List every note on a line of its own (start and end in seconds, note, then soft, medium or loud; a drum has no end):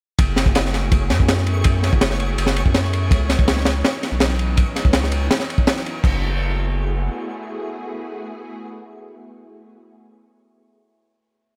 0.18 1.12 F#1 medium
0.18 1.08 A3 loud
0.18 1.08 B3 medium
0.18 1.08 E4 loud
0.18 1.08 F#4 loud
0.18 1.08 G#4 loud
0.18 6.05 C#5 medium
0.18 6.05 C#6 medium
0.18 kick loud
0.18 ride medium
0.36 snare medium
0.36 ride medium
0.46 kick medium
0.55 snare loud
0.55 ride medium
0.65 snare soft
0.74 snare soft
0.74 ride medium
0.92 kick loud
0.92 ride medium
1.10 1.91 F#2 loud
1.10 1.44 A3 medium
1.10 1.44 B3 medium
1.10 1.44 E4 medium
1.10 1.44 F#4 medium
1.10 1.45 G#4 loud
1.10 snare medium
1.10 ride medium
1.20 kick medium
1.28 snare loud
1.28 ride medium
1.38 snare soft
1.46 1.63 A3 medium
1.46 1.63 B3 medium
1.46 1.63 E4 medium
1.46 1.63 F#4 medium
1.46 1.63 G#4 loud
1.46 ride medium
1.64 2.72 A3 medium
1.64 2.72 B3 medium
1.64 2.72 E4 medium
1.64 2.72 F#4 medium
1.64 2.72 G#4 loud
1.64 kick loud
1.64 ride medium
1.83 snare soft
1.83 ride medium
1.93 2.37 F#1 medium
1.93 kick loud
2.01 snare loud
2.01 ride medium
2.10 snare soft
2.20 ride medium
2.38 2.64 F#1 loud
2.38 ride medium
2.46 snare medium
2.56 ride medium
2.66 3.13 F#2 medium
2.66 kick medium
2.74 2.91 A3 loud
2.74 2.91 B3 loud
2.74 2.91 E4 medium
2.74 2.91 F#4 loud
2.74 2.91 G#4 loud
2.74 snare loud
2.74 ride medium
2.84 snare soft
2.93 3.09 A3 medium
2.93 3.09 B3 medium
2.93 3.09 E4 medium
2.93 3.09 F#4 medium
2.93 3.09 G#4 medium
2.93 ride medium
3.11 3.37 C#2 medium
3.11 4.01 E3 loud
3.11 4.01 F#3 medium
3.11 4.01 B3 loud
3.11 4.01 C#4 medium
3.11 4.01 D#4 loud
3.11 kick loud
3.11 ride medium
3.29 snare medium
3.29 ride medium
3.39 3.83 C#2 medium
3.39 kick loud
3.48 snare loud
3.48 ride medium
3.57 snare soft
3.65 snare loud
3.65 ride medium
3.84 snare loud
3.84 ride medium
4.02 4.37 E3 medium
4.02 4.37 F#3 medium
4.02 4.37 B3 medium
4.02 4.37 C#4 medium
4.02 4.37 D#4 loud
4.02 snare soft
4.02 ride medium
4.12 4.65 B1 medium
4.20 snare loud
4.20 ride medium
4.30 snare soft
4.39 4.55 E3 medium
4.39 4.55 F#3 medium
4.39 4.55 B3 medium
4.39 4.55 C#4 medium
4.39 4.55 D#4 medium
4.39 ride medium
4.57 5.57 E3 medium
4.57 5.56 F#3 medium
4.57 5.57 B3 medium
4.57 5.56 C#4 medium
4.57 5.57 D#4 loud
4.57 kick loud
4.57 ride medium
4.76 snare soft
4.76 ride medium
4.85 5.29 C#2 medium
4.85 kick medium
4.93 snare loud
4.93 ride medium
5.03 snare medium
5.12 ride medium
5.31 snare loud
5.31 ride medium
5.40 snare soft
5.50 ride medium
5.58 6.02 E3 medium
5.58 6.02 F#3 medium
5.58 6.02 B3 medium
5.58 6.02 C#4 medium
5.58 6.02 D#4 loud
5.58 kick medium
5.67 snare loud
5.67 ride medium
5.76 snare soft
5.86 ride medium
6.04 7.10 F#1 medium
6.04 9.73 A3 loud
6.04 9.73 B3 loud
6.04 9.73 E4 medium
6.04 9.73 F#4 medium
6.04 9.73 G#4 loud
6.04 kick loud
6.04 crash medium